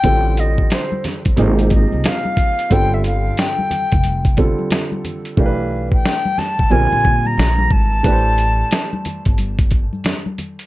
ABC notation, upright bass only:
X:1
M:4/4
L:1/16
Q:"Swing 16ths" 1/4=90
K:Gdor
V:1 name="Upright bass" clef=bass
A,,,4 z3 G,,, ^G,,,3 ^B,,, z4 | G,,,4 z3 F,,,4 z4 z | =B,,,4 z3 A,,, _B,,, B,,, B,,2 B,,,2 _A,,,2 | A,,,4 z3 G,,,4 z4 z |]